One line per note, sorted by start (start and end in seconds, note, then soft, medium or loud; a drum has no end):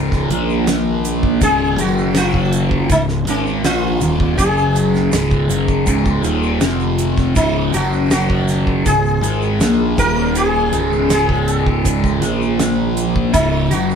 0.00 0.26 C#1 medium
0.00 0.29 C#2 medium
0.00 7.36 C#2 medium
0.00 0.29 G#2 medium
0.00 0.29 C#3 medium
0.00 7.36 D#3 medium
0.00 0.27 B3 medium
0.12 kick medium
0.12 snare soft
0.12 shaker soft
0.30 1.37 A#1 medium
0.30 1.41 A#2 medium
0.30 1.41 F3 medium
0.30 1.41 A#3 loud
0.30 closed hi-hat medium
0.50 shaker soft
0.67 snare loud
0.67 closed hi-hat medium
0.67 shaker medium
1.05 closed hi-hat medium
1.05 shaker medium
1.23 kick medium
1.41 1.76 C#1 medium
1.41 1.77 C#2 medium
1.41 1.78 G#2 loud
1.41 1.78 C#3 loud
1.41 1.77 G#4 loud
1.41 kick loud
1.41 closed hi-hat medium
1.41 shaker medium
1.78 2.85 F#1 loud
1.78 2.89 F#2 medium
1.78 2.89 C#3 medium
1.78 2.90 F#3 loud
1.78 2.14 F#4 medium
1.78 closed hi-hat medium
1.78 shaker medium
1.98 shaker soft
2.15 2.91 F4 loud
2.15 snare loud
2.15 closed hi-hat medium
2.15 shaker medium
2.34 kick medium
2.53 closed hi-hat medium
2.53 shaker medium
2.71 kick medium
2.90 3.24 C#1 medium
2.90 3.19 C#2 medium
2.90 3.20 G#2 medium
2.90 3.02 D#4 loud
2.90 kick medium
2.90 closed hi-hat medium
2.90 shaker medium
3.09 snare soft
3.09 shaker soft
3.27 3.61 G#1 medium
3.27 3.63 G#2 loud
3.27 3.63 D#3 loud
3.27 3.63 G#3 loud
3.27 3.63 C#4 medium
3.27 closed hi-hat medium
3.27 shaker medium
3.46 shaker soft
3.63 3.98 A#1 medium
3.63 4.00 A#2 medium
3.63 4.00 F3 loud
3.63 4.00 A#3 loud
3.63 4.41 F4 medium
3.63 snare loud
3.63 closed hi-hat medium
3.63 shaker medium
4.01 4.36 D#1 medium
4.01 4.38 D#2 medium
4.01 4.38 A#2 loud
4.01 4.38 D#3 loud
4.01 closed hi-hat medium
4.01 shaker medium
4.20 kick medium
4.38 5.09 F#1 medium
4.38 5.11 F#2 loud
4.38 5.12 C#3 medium
4.38 5.12 F#3 loud
4.38 6.58 G#4 medium
4.38 kick loud
4.38 closed hi-hat medium
4.38 shaker medium
4.57 shaker soft
4.76 closed hi-hat medium
4.76 shaker medium
4.94 snare soft
4.94 shaker soft
5.12 5.47 C#1 loud
5.12 5.48 C#2 loud
5.12 5.49 G#2 loud
5.12 5.49 C#3 loud
5.12 snare loud
5.12 closed hi-hat medium
5.12 shaker medium
5.31 kick medium
5.31 shaker soft
5.49 5.84 F#1 medium
5.49 5.86 F#2 medium
5.49 5.86 C#3 medium
5.49 5.86 F#3 medium
5.49 closed hi-hat medium
5.49 shaker medium
5.68 kick medium
5.68 shaker soft
5.86 6.22 C#1 medium
5.86 6.23 C#2 medium
5.86 6.23 G#2 loud
5.86 6.24 C#3 loud
5.86 kick medium
5.86 closed hi-hat medium
5.86 shaker loud
6.05 kick medium
6.05 shaker soft
6.23 6.59 D#1 medium
6.23 6.61 D#2 medium
6.23 6.61 A#2 medium
6.23 6.61 D#3 loud
6.23 closed hi-hat medium
6.23 shaker medium
6.43 shaker soft
6.61 7.32 F1 medium
6.61 7.35 F2 medium
6.61 7.36 C3 medium
6.61 7.36 F3 medium
6.61 snare loud
6.61 closed hi-hat medium
6.61 shaker medium
6.80 shaker soft
6.98 closed hi-hat medium
6.98 shaker medium
7.17 kick medium
7.17 snare soft
7.17 shaker soft
7.36 7.71 C#1 medium
7.36 7.72 C#2 loud
7.36 13.95 C#2 medium
7.36 7.72 G#2 medium
7.36 7.72 C#3 loud
7.36 13.95 D#3 medium
7.36 7.75 D#4 medium
7.36 kick loud
7.36 closed hi-hat medium
7.36 shaker medium
7.73 8.82 F#1 loud
7.73 8.84 F#2 medium
7.73 8.84 C#3 medium
7.73 8.85 F#3 medium
7.73 8.10 F#4 medium
7.73 closed hi-hat medium
7.73 shaker medium
7.92 shaker soft
8.11 8.86 F#4 medium
8.11 snare loud
8.11 closed hi-hat medium
8.11 shaker medium
8.30 kick medium
8.48 snare soft
8.48 closed hi-hat medium
8.48 shaker medium
8.67 kick medium
8.85 9.21 C#1 medium
8.85 9.15 C#2 medium
8.85 9.16 G#2 medium
8.85 9.99 G#4 medium
8.85 kick medium
8.85 closed hi-hat medium
8.85 shaker medium
9.05 shaker soft
9.22 9.58 G#1 medium
9.22 9.59 G#2 medium
9.22 9.59 D#3 loud
9.22 9.60 G#3 loud
9.22 closed hi-hat medium
9.22 shaker medium
9.42 shaker soft
9.60 9.95 A#1 medium
9.60 9.97 A#2 medium
9.60 9.97 F3 loud
9.60 9.98 A#3 loud
9.60 snare loud
9.60 closed hi-hat medium
9.60 shaker medium
9.97 10.69 D#1 medium
9.97 10.71 D#2 medium
9.97 10.72 A#2 medium
9.97 10.72 D#3 loud
9.97 10.36 A#4 loud
9.97 kick loud
9.97 closed hi-hat medium
9.97 shaker medium
10.35 11.11 G#4 loud
10.35 closed hi-hat medium
10.35 shaker medium
10.72 12.18 C#1 medium
10.72 12.21 C#2 medium
10.72 12.21 G#2 medium
10.72 12.21 C#3 loud
10.72 closed hi-hat medium
10.72 shaker medium
10.92 shaker soft
11.10 12.19 G#4 medium
11.10 snare loud
11.10 closed hi-hat loud
11.10 shaker loud
11.29 kick medium
11.48 closed hi-hat medium
11.48 shaker medium
11.66 kick medium
11.85 kick medium
11.85 closed hi-hat loud
11.85 shaker medium
12.04 kick medium
12.04 shaker soft
12.21 13.30 A#1 medium
12.21 13.33 A#2 loud
12.21 13.33 F3 loud
12.21 13.33 A#3 loud
12.21 snare soft
12.21 closed hi-hat medium
12.21 shaker medium
12.42 shaker soft
12.60 snare loud
12.60 closed hi-hat medium
12.60 shaker medium
12.97 closed hi-hat medium
12.97 shaker medium
13.16 kick medium
13.33 13.69 C#1 medium
13.33 13.70 C#2 medium
13.33 13.71 G#2 loud
13.33 13.71 C#3 loud
13.33 13.73 D#4 loud
13.33 kick loud
13.33 closed hi-hat medium
13.33 shaker medium
13.71 13.95 F#1 loud
13.71 13.95 F#2 medium
13.71 13.95 C#3 medium
13.71 13.95 F#3 medium
13.71 13.95 F#4 medium
13.71 closed hi-hat medium
13.71 shaker medium
13.90 shaker soft